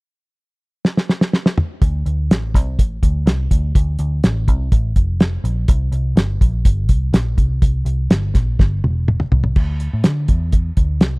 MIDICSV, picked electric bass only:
0, 0, Header, 1, 2, 480
1, 0, Start_track
1, 0, Key_signature, -1, "minor"
1, 0, Tempo, 484653
1, 1792, Time_signature, 4, 2, 24, 8
1, 11085, End_track
2, 0, Start_track
2, 0, Title_t, "Picked electric bass"
2, 0, Program_c, 0, 34
2, 1801, Note_on_c, 0, 38, 100
2, 2001, Note_off_c, 0, 38, 0
2, 2037, Note_on_c, 0, 38, 85
2, 2279, Note_off_c, 0, 38, 0
2, 2279, Note_on_c, 0, 33, 75
2, 2520, Note_off_c, 0, 33, 0
2, 2520, Note_on_c, 0, 36, 81
2, 2758, Note_off_c, 0, 36, 0
2, 2758, Note_on_c, 0, 33, 78
2, 2959, Note_off_c, 0, 33, 0
2, 2997, Note_on_c, 0, 38, 86
2, 3198, Note_off_c, 0, 38, 0
2, 3227, Note_on_c, 0, 36, 89
2, 3433, Note_off_c, 0, 36, 0
2, 3476, Note_on_c, 0, 38, 76
2, 3678, Note_off_c, 0, 38, 0
2, 3718, Note_on_c, 0, 38, 94
2, 3919, Note_off_c, 0, 38, 0
2, 3952, Note_on_c, 0, 38, 85
2, 4156, Note_off_c, 0, 38, 0
2, 4195, Note_on_c, 0, 33, 89
2, 4439, Note_off_c, 0, 33, 0
2, 4439, Note_on_c, 0, 36, 84
2, 4639, Note_off_c, 0, 36, 0
2, 4675, Note_on_c, 0, 33, 89
2, 4877, Note_off_c, 0, 33, 0
2, 4911, Note_on_c, 0, 29, 75
2, 5319, Note_off_c, 0, 29, 0
2, 5387, Note_on_c, 0, 34, 87
2, 5592, Note_off_c, 0, 34, 0
2, 5633, Note_on_c, 0, 36, 97
2, 5836, Note_off_c, 0, 36, 0
2, 5861, Note_on_c, 0, 36, 82
2, 6069, Note_off_c, 0, 36, 0
2, 6097, Note_on_c, 0, 31, 86
2, 6307, Note_off_c, 0, 31, 0
2, 6352, Note_on_c, 0, 34, 83
2, 6556, Note_off_c, 0, 34, 0
2, 6592, Note_on_c, 0, 31, 88
2, 6826, Note_off_c, 0, 31, 0
2, 6826, Note_on_c, 0, 36, 78
2, 7032, Note_off_c, 0, 36, 0
2, 7060, Note_on_c, 0, 34, 94
2, 7268, Note_off_c, 0, 34, 0
2, 7303, Note_on_c, 0, 36, 81
2, 7511, Note_off_c, 0, 36, 0
2, 7546, Note_on_c, 0, 36, 89
2, 7752, Note_off_c, 0, 36, 0
2, 7777, Note_on_c, 0, 36, 84
2, 7987, Note_off_c, 0, 36, 0
2, 8024, Note_on_c, 0, 31, 85
2, 8231, Note_off_c, 0, 31, 0
2, 8265, Note_on_c, 0, 34, 79
2, 8472, Note_off_c, 0, 34, 0
2, 8513, Note_on_c, 0, 31, 81
2, 8716, Note_off_c, 0, 31, 0
2, 8754, Note_on_c, 0, 28, 74
2, 9162, Note_off_c, 0, 28, 0
2, 9231, Note_on_c, 0, 36, 77
2, 9436, Note_off_c, 0, 36, 0
2, 9472, Note_on_c, 0, 38, 86
2, 9779, Note_off_c, 0, 38, 0
2, 9839, Note_on_c, 0, 45, 78
2, 9939, Note_off_c, 0, 45, 0
2, 9960, Note_on_c, 0, 50, 88
2, 10162, Note_off_c, 0, 50, 0
2, 10185, Note_on_c, 0, 40, 77
2, 10598, Note_off_c, 0, 40, 0
2, 10667, Note_on_c, 0, 38, 72
2, 10911, Note_off_c, 0, 38, 0
2, 10911, Note_on_c, 0, 36, 85
2, 11085, Note_off_c, 0, 36, 0
2, 11085, End_track
0, 0, End_of_file